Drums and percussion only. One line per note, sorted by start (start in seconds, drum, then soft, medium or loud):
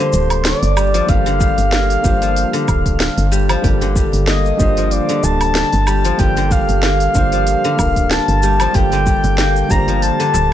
0.13 shaker medium
0.30 open hi-hat soft
0.30 low woodblock medium
0.30 shaker soft
0.45 snare loud
0.45 open hi-hat medium
0.45 shaker soft
0.63 open hi-hat soft
0.63 shaker soft
0.77 low woodblock medium
0.77 shaker medium
0.94 open hi-hat soft
0.94 shaker soft
1.09 kick loud
1.09 open hi-hat medium
1.09 shaker soft
1.26 open hi-hat soft
1.26 shaker soft
1.41 kick loud
1.41 shaker medium
1.58 open hi-hat soft
1.58 shaker soft
1.72 snare loud
1.72 open hi-hat medium
1.72 shaker soft
1.90 open hi-hat soft
1.90 shaker soft
2.04 kick loud
2.04 shaker medium
2.22 open hi-hat soft
2.22 shaker soft
2.37 open hi-hat medium
2.37 shaker soft
2.54 open hi-hat soft
2.54 shaker soft
2.68 kick loud
2.68 low woodblock medium
2.68 shaker medium
2.86 kick medium
2.86 open hi-hat soft
2.86 shaker soft
3.00 snare loud
3.00 open hi-hat medium
3.00 shaker soft
3.18 open hi-hat soft
3.18 shaker soft
3.32 shaker medium
3.49 open hi-hat soft
3.49 low woodblock medium
3.49 shaker soft
3.64 kick loud
3.64 open hi-hat soft
3.64 shaker soft
3.81 open hi-hat soft
3.81 shaker soft
3.96 kick loud
3.96 shaker medium
4.13 open hi-hat soft
4.13 shaker soft
4.27 snare loud
4.27 open hi-hat medium
4.27 shaker soft
4.45 shaker soft
4.60 kick loud
4.60 shaker medium
4.77 open hi-hat soft
4.77 shaker soft
4.91 open hi-hat soft
4.91 shaker soft
5.09 open hi-hat soft
5.09 shaker soft
5.24 shaker medium
5.41 open hi-hat soft
5.41 low woodblock medium
5.41 shaker soft
5.55 snare loud
5.55 open hi-hat medium
5.55 shaker soft
5.73 open hi-hat soft
5.73 shaker soft
5.87 low woodblock medium
5.87 shaker medium
6.05 open hi-hat soft
6.05 shaker soft
6.19 kick loud
6.19 open hi-hat medium
6.19 shaker soft
6.37 open hi-hat soft
6.37 shaker soft
6.51 kick loud
6.51 shaker medium
6.69 open hi-hat soft
6.69 shaker soft
6.83 snare loud
6.83 open hi-hat soft
6.83 shaker soft
7.00 open hi-hat soft
7.00 shaker soft
7.15 kick loud
7.15 shaker medium
7.32 open hi-hat soft
7.32 shaker soft
7.47 open hi-hat medium
7.47 shaker soft
7.64 open hi-hat soft
7.64 shaker soft
7.79 kick loud
7.79 low woodblock medium
7.79 shaker medium
7.96 kick medium
7.96 open hi-hat soft
7.96 shaker soft
8.11 snare loud
8.11 open hi-hat medium
8.11 shaker soft
8.28 open hi-hat soft
8.28 shaker soft
8.43 shaker medium
8.60 open hi-hat soft
8.60 low woodblock medium
8.60 shaker soft
8.74 kick loud
8.74 open hi-hat medium
8.74 shaker soft
8.92 open hi-hat soft
8.92 darbuka ka medium
8.92 shaker soft
9.07 kick loud
9.07 shaker medium
9.24 open hi-hat soft
9.24 darbuka dum medium
9.24 shaker soft
9.38 snare loud
9.38 open hi-hat medium
9.38 shaker soft
9.56 shaker soft
9.71 kick loud
9.71 shaker medium
9.88 open hi-hat soft
9.88 darbuka dum medium
9.88 shaker soft
10.02 open hi-hat medium
10.02 shaker soft
10.20 open hi-hat soft
10.20 shaker soft
10.34 darbuka ka soft
10.34 darbuka tek medium
10.34 shaker medium